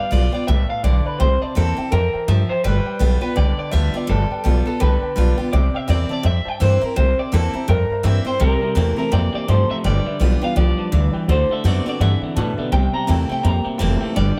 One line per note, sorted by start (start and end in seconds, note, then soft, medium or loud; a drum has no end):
0.00 0.12 F5 medium
0.11 0.33 B1 medium
0.11 0.32 G3 medium
0.11 0.33 B3 loud
0.11 0.31 F4 medium
0.11 0.25 B4 medium
0.11 0.25 D5 medium
0.11 0.33 D5 medium
0.11 0.25 F5 medium
0.32 0.48 B3 soft
0.32 0.47 F4 medium
0.32 0.42 B4 medium
0.32 0.42 D5 medium
0.32 0.47 D5 medium
0.32 0.42 G5 medium
0.47 0.69 C2 loud
0.47 0.83 A2 medium
0.47 0.61 B4 loud
0.47 0.61 D5 medium
0.47 0.68 E5 medium
0.47 0.61 G5 loud
0.68 0.78 B4 medium
0.68 0.78 D5 medium
0.68 0.84 F5 medium
0.68 0.78 A5 medium
0.68 muted upright bass stroke medium
0.83 1.05 B1 medium
0.83 1.19 D3 loud
0.83 0.97 B4 medium
0.83 0.97 D5 medium
0.83 1.06 D5 medium
0.83 0.97 G5 medium
1.05 1.14 B4 medium
1.05 1.20 B4 medium
1.05 1.15 D5 medium
1.05 1.15 A5 medium
1.05 muted upright bass stroke medium
1.19 1.41 C2 loud
1.19 1.90 C3 medium
1.19 1.33 C5 medium
1.19 1.42 C5 medium
1.19 1.33 E5 medium
1.19 1.33 G5 medium
1.41 1.51 C5 medium
1.41 1.57 D5 medium
1.41 1.51 E5 medium
1.41 1.51 A5 medium
1.41 muted upright bass stroke medium
1.55 1.78 E2 medium
1.55 1.77 E3 medium
1.55 1.77 A#3 medium
1.55 1.77 C4 medium
1.55 1.75 E4 loud
1.55 1.92 A4 medium
1.55 1.69 C5 medium
1.55 1.69 E5 medium
1.55 1.70 G5 medium
1.77 1.92 C4 soft
1.77 1.91 E4 medium
1.77 1.87 C5 medium
1.77 1.87 E5 medium
1.77 1.87 G5 medium
1.77 muted upright bass stroke medium
1.92 2.13 F2 loud
1.92 2.27 E3 medium
1.92 2.30 A#4 medium
1.92 2.05 C5 loud
1.92 2.05 E5 medium
1.92 2.05 G5 loud
2.13 2.22 C5 medium
2.13 2.23 E5 medium
2.13 2.23 G5 medium
2.13 muted upright bass stroke medium
2.28 2.49 G2 medium
2.28 2.63 F3 medium
2.28 2.41 C5 medium
2.28 2.41 E5 medium
2.28 2.51 E5 medium
2.28 2.41 G5 medium
2.49 2.63 C5 medium
2.49 2.59 C5 medium
2.49 2.59 E5 medium
2.49 2.59 G5 medium
2.49 muted upright bass stroke medium
2.64 2.85 G1 medium
2.64 2.98 G3 medium
2.64 2.77 B4 medium
2.64 3.18 B4 medium
2.64 2.77 D5 medium
2.64 2.78 G5 loud
2.86 2.95 B4 medium
2.86 2.95 D5 medium
2.86 2.95 G5 medium
2.86 muted upright bass stroke medium
2.99 3.21 B1 loud
2.99 3.21 G3 medium
2.99 3.21 B3 loud
2.99 3.20 F4 loud
2.99 3.13 B4 medium
2.99 3.13 D5 medium
2.99 3.14 G5 medium
3.21 3.37 B3 soft
3.21 3.36 F4 medium
3.21 3.31 B4 medium
3.21 3.37 B4 medium
3.21 3.31 D5 medium
3.21 3.31 G5 medium
3.36 3.58 C2 medium
3.36 4.06 D3 medium
3.36 3.49 B4 loud
3.36 3.50 D5 medium
3.36 3.57 D5 medium
3.36 3.50 G5 loud
3.58 3.67 B4 medium
3.58 3.67 D5 medium
3.58 3.72 D5 loud
3.58 3.67 G5 medium
3.58 muted upright bass stroke medium
3.71 3.94 D2 medium
3.71 3.93 G3 medium
3.71 3.94 B3 loud
3.71 3.93 F4 loud
3.71 3.86 B4 medium
3.71 3.86 D5 medium
3.71 3.97 E5 medium
3.71 3.86 A5 medium
3.94 4.09 B3 medium
3.94 4.08 F4 medium
3.94 4.04 B4 medium
3.94 4.03 D5 medium
3.94 4.11 D5 medium
3.94 4.04 G5 medium
3.94 muted upright bass stroke medium
4.07 4.30 G1 loud
4.07 4.43 G3 medium
4.07 4.66 A4 medium
4.07 4.22 B4 medium
4.07 4.22 D5 medium
4.07 4.22 G5 medium
4.31 4.40 B4 medium
4.31 4.40 D5 medium
4.31 4.40 G5 medium
4.31 muted upright bass stroke medium
4.44 4.66 B1 loud
4.44 4.65 G3 medium
4.44 4.66 B3 medium
4.44 4.64 F4 medium
4.44 4.58 B4 medium
4.44 4.58 D5 medium
4.44 4.58 G5 medium
4.66 4.81 B3 soft
4.66 4.80 F4 medium
4.66 4.81 A4 medium
4.66 4.75 B4 medium
4.66 4.75 D5 medium
4.66 4.75 A5 medium
4.66 muted upright bass stroke medium
4.80 5.02 C2 loud
4.80 5.50 D3 loud
4.80 4.94 B4 loud
4.80 5.35 B4 medium
4.80 4.94 D5 medium
4.80 4.94 G5 loud
5.02 5.11 B4 medium
5.02 5.11 D5 medium
5.02 5.11 G5 medium
5.02 muted upright bass stroke medium
5.16 5.38 B1 medium
5.16 5.37 G3 medium
5.16 5.38 B3 loud
5.16 5.36 F4 loud
5.16 5.30 B4 medium
5.16 5.30 D5 medium
5.16 5.30 A5 medium
5.37 5.53 B3 soft
5.37 5.52 F4 medium
5.37 5.46 B4 medium
5.37 5.47 D5 medium
5.37 5.47 G5 medium
5.52 5.74 C2 medium
5.52 6.22 C3 medium
5.52 5.66 C5 medium
5.52 5.76 D5 medium
5.52 5.66 E5 medium
5.52 5.66 G5 medium
5.73 5.83 C5 medium
5.73 5.83 E5 medium
5.73 5.90 E5 medium
5.73 5.83 G5 medium
5.73 muted upright bass stroke medium
5.87 6.10 E2 medium
5.87 6.09 E3 medium
5.87 6.09 A#3 medium
5.87 6.10 C4 medium
5.87 6.08 E4 medium
5.87 6.01 C5 medium
5.87 6.12 D5 medium
5.87 6.01 E5 medium
5.87 6.01 G5 medium
6.09 6.25 C4 soft
6.09 6.24 E4 medium
6.09 6.19 C5 medium
6.09 6.19 E5 medium
6.09 6.19 A5 medium
6.13 6.26 D5 medium
6.23 6.45 F2 medium
6.23 6.93 G2 medium
6.23 6.37 C5 medium
6.23 6.37 E5 medium
6.23 6.48 E5 loud
6.23 6.38 G5 loud
6.45 6.54 C5 medium
6.45 6.54 E5 medium
6.45 6.62 G5 loud
6.45 6.55 A5 medium
6.45 muted upright bass stroke medium
6.60 6.82 G2 medium
6.60 6.81 E3 medium
6.60 6.82 A#3 loud
6.60 6.82 C4 loud
6.60 6.80 E4 loud
6.60 6.73 C5 medium
6.60 6.84 C5 medium
6.60 6.74 E5 medium
6.60 6.74 G5 medium
6.81 6.97 C4 medium
6.81 6.96 E4 medium
6.81 6.96 A#4 loud
6.81 6.90 C5 medium
6.81 6.90 E5 medium
6.81 6.91 A#5 medium
6.81 muted upright bass stroke medium
6.96 7.18 C2 loud
6.96 7.66 C3 medium
6.96 7.09 C5 medium
6.96 7.19 C5 loud
6.96 7.10 E5 medium
6.96 7.10 G5 loud
7.18 7.27 C5 medium
7.18 7.34 D5 medium
7.18 7.27 E5 medium
7.18 7.27 G5 medium
7.18 muted upright bass stroke medium
7.32 7.54 E2 medium
7.32 7.53 E3 medium
7.32 7.53 A#3 medium
7.32 7.53 C4 loud
7.32 7.52 E4 loud
7.32 7.69 A4 medium
7.32 7.46 C5 medium
7.32 7.46 E5 medium
7.32 7.46 G5 medium
7.53 7.68 C4 soft
7.53 7.68 E4 medium
7.53 7.63 C5 medium
7.53 7.63 E5 medium
7.53 7.64 A#5 medium
7.53 muted upright bass stroke medium
7.68 7.89 F2 medium
7.68 8.37 G2 loud
7.68 8.06 A#4 loud
7.68 7.82 C5 loud
7.68 7.82 E5 medium
7.68 7.82 G5 loud
7.90 7.99 C5 medium
7.90 8.00 E5 medium
7.90 8.00 A#5 medium
7.90 muted upright bass stroke medium
8.03 8.25 G2 medium
8.03 8.25 E3 medium
8.03 8.25 A#3 loud
8.03 8.25 C4 loud
8.03 8.23 E4 loud
8.03 8.18 C5 medium
8.03 8.26 E5 medium
8.03 8.18 E5 medium
8.03 8.18 G5 medium
8.25 8.40 C4 medium
8.25 8.39 E4 medium
8.25 8.41 C5 medium
8.25 8.36 C5 medium
8.25 8.36 E5 medium
8.25 8.36 G5 medium
8.25 muted upright bass stroke medium
8.40 8.61 C2 loud
8.40 9.09 C3 loud
8.40 8.60 C3 medium
8.40 8.60 G3 loud
8.40 8.97 A#4 loud
8.40 8.54 C5 medium
8.40 8.54 E5 medium
8.40 8.54 G5 medium
8.61 8.75 C3 medium
8.61 8.75 G3 medium
8.61 8.71 C5 medium
8.61 8.71 E5 medium
8.61 8.71 A#5 medium
8.61 muted upright bass stroke medium
8.75 8.97 E2 medium
8.75 8.96 C3 medium
8.75 8.96 E3 medium
8.75 8.96 A3 loud
8.75 8.97 A#3 medium
8.75 8.97 C4 medium
8.75 8.95 E4 loud
8.75 8.89 C5 medium
8.75 8.90 E5 medium
8.75 8.90 G5 medium
8.96 9.11 C3 medium
8.96 9.11 A3 medium
8.96 9.12 C4 soft
8.96 9.11 E4 medium
8.96 9.12 A#4 medium
8.96 9.06 C5 medium
8.96 9.07 E5 medium
8.96 9.07 A#5 medium
9.12 9.33 F2 loud
9.12 9.32 C3 medium
9.12 9.47 E3 medium
9.12 9.32 A#3 medium
9.12 9.25 C5 loud
9.12 9.34 D5 medium
9.12 9.25 E5 loud
9.12 9.26 G5 loud
9.33 9.46 C3 medium
9.33 9.47 A#3 medium
9.33 9.42 C5 medium
9.33 9.50 D5 loud
9.33 9.42 E5 medium
9.33 9.43 G5 medium
9.33 muted upright bass stroke medium
9.48 9.69 G2 medium
9.48 9.68 C3 medium
9.48 9.83 F3 medium
9.48 9.68 A3 loud
9.48 9.61 C5 medium
9.48 9.71 C5 medium
9.48 9.61 E5 medium
9.48 9.61 G5 medium
9.69 9.83 C3 medium
9.69 9.83 A3 medium
9.69 9.78 C5 medium
9.69 9.79 E5 medium
9.69 9.76 E5 medium
9.69 9.79 A#5 medium
9.69 muted upright bass stroke medium
9.84 10.05 G1 loud
9.84 10.04 G2 medium
9.84 10.04 D3 loud
9.84 10.18 G3 loud
9.84 9.97 B4 medium
9.84 9.97 D5 medium
9.84 10.44 D5 medium
9.84 9.98 G5 loud
10.06 10.19 G2 medium
10.06 10.19 D3 medium
10.06 10.15 B4 medium
10.06 10.15 D5 medium
10.06 10.15 E5 medium
10.06 muted upright bass stroke medium
10.20 10.41 B1 medium
10.20 10.40 G2 medium
10.20 10.40 E3 medium
10.20 10.41 G3 medium
10.20 10.41 B3 loud
10.20 10.40 F4 medium
10.20 10.33 B4 medium
10.20 10.33 D5 medium
10.20 10.34 G5 medium
10.41 10.55 G2 medium
10.41 10.55 E3 medium
10.41 10.56 B3 soft
10.41 10.56 F4 medium
10.41 10.51 B4 medium
10.41 10.51 D5 medium
10.41 10.57 F5 medium
10.41 10.51 G5 medium
10.41 muted upright bass stroke medium
10.56 10.77 C2 loud
10.56 10.76 G2 medium
10.56 10.91 F3 medium
10.56 10.76 F3 medium
10.56 10.69 B4 medium
10.56 10.69 D5 medium
10.56 11.10 D5 loud
10.56 10.69 G5 loud
10.77 10.91 G2 medium
10.77 10.91 F3 medium
10.77 10.86 B4 medium
10.77 10.86 D5 medium
10.77 10.87 A5 medium
10.77 muted upright bass stroke medium
10.92 11.13 D2 medium
10.92 11.11 G2 medium
10.92 11.27 E3 medium
10.92 11.12 E3 medium
10.92 11.05 B4 medium
10.92 11.05 D5 medium
10.92 11.05 F5 medium
11.13 11.27 G2 medium
11.13 11.27 E3 medium
11.13 11.22 B4 medium
11.13 11.22 D5 medium
11.13 11.22 G5 medium
11.13 muted upright bass stroke medium
11.28 11.48 D2 medium
11.28 11.48 D3 medium
11.28 11.63 D3 medium
11.28 11.48 A3 medium
11.28 11.41 A4 medium
11.28 11.52 C5 medium
11.28 11.41 D5 medium
11.28 11.41 F#5 loud
11.49 11.63 D3 medium
11.49 11.63 A3 medium
11.49 11.58 A4 medium
11.49 11.59 D5 medium
11.49 11.65 E5 medium
11.49 11.59 F#5 medium
11.49 muted upright bass stroke medium
11.64 11.85 F#2 loud
11.64 11.85 D3 medium
11.64 11.84 D3 medium
11.64 11.85 A3 medium
11.64 11.84 B3 medium
11.64 11.85 C4 loud
11.64 11.85 F#4 loud
11.64 11.77 A4 medium
11.64 11.77 D5 medium
11.64 11.77 F#5 medium
11.68 11.86 D5 medium
11.85 11.99 D3 medium
11.85 11.99 B3 medium
11.85 12.01 C4 medium
11.85 12.00 F#4 medium
11.85 11.94 A4 medium
11.85 11.94 D5 medium
11.85 12.01 D5 medium
11.85 11.95 F#5 medium
11.85 muted upright bass stroke medium
12.00 12.21 G2 loud
12.00 12.19 D3 medium
12.00 12.35 E3 medium
12.00 12.20 C4 medium
12.00 12.13 A4 loud
12.00 12.13 D5 medium
12.00 12.21 E5 medium
12.00 12.13 F#5 loud
12.21 12.36 D3 medium
12.21 12.36 C4 medium
12.21 12.30 A4 medium
12.21 12.30 D5 medium
12.21 12.30 F#5 medium
12.21 muted upright bass stroke medium
12.35 12.57 A2 medium
12.35 12.71 B2 medium
12.35 12.56 D3 medium
12.35 12.56 B3 loud
12.35 12.49 A4 medium
12.35 12.49 D5 medium
12.35 12.49 A5 loud
12.58 12.71 D3 medium
12.58 12.71 B3 medium
12.58 12.66 A4 medium
12.58 12.66 D5 medium
12.58 12.66 E5 medium
12.58 muted upright bass stroke medium
12.71 12.93 C2 medium
12.71 13.41 C3 medium
12.71 12.92 C3 medium
12.71 12.92 G3 loud
12.71 12.85 C5 medium
12.71 12.85 E5 medium
12.71 12.85 G5 loud
12.71 12.93 G5 loud
12.93 13.06 C3 medium
12.93 13.07 G3 medium
12.93 13.02 C5 medium
12.93 13.02 E5 medium
12.93 13.02 A5 medium
12.93 13.09 A#5 medium
12.93 muted upright bass stroke medium
13.07 13.29 E2 medium
13.07 13.27 C3 medium
13.07 13.28 E3 medium
13.07 13.27 A3 medium
13.07 13.29 A#3 medium
13.07 13.29 C4 medium
13.07 13.28 E4 medium
13.07 13.21 C5 medium
13.07 13.21 E5 medium
13.07 13.21 G5 medium
13.07 13.30 G5 medium
13.29 13.42 C3 medium
13.29 13.42 A3 medium
13.29 13.44 C4 medium
13.29 13.43 E4 medium
13.29 13.38 C5 medium
13.29 13.38 E5 medium
13.29 13.38 G5 medium
13.29 13.47 G5 medium
13.29 muted upright bass stroke medium
13.43 13.65 F2 loud
13.43 14.13 G2 medium
13.43 13.63 C3 medium
13.43 13.63 A#3 loud
13.43 13.56 C5 loud
13.43 13.56 E5 medium
13.43 13.56 A#5 loud
13.43 13.67 A#5 medium
13.64 13.78 C3 medium
13.64 13.78 A#3 medium
13.64 13.73 C5 medium
13.64 13.74 E5 medium
13.64 13.74 G5 medium
13.64 muted upright bass stroke medium
13.78 14.01 F1 medium
13.78 13.99 C3 medium
13.78 14.14 E3 loud
13.78 13.99 A3 loud
13.78 14.14 A#3 medium
13.78 14.15 C4 loud
13.78 14.15 E4 loud
13.78 13.92 C5 medium
13.78 13.92 E5 medium
13.78 13.92 G5 loud
14.00 14.14 C3 medium
14.00 14.14 A3 medium
14.00 14.09 C5 medium
14.00 14.09 E5 medium
14.00 14.10 G5 medium
14.15 14.37 G1 loud
14.15 14.35 G2 loud
14.15 14.35 D3 loud
14.15 14.39 G3 loud
14.15 14.29 B4 medium
14.15 14.29 D5 medium
14.15 14.38 D5 loud
14.15 14.29 G5 loud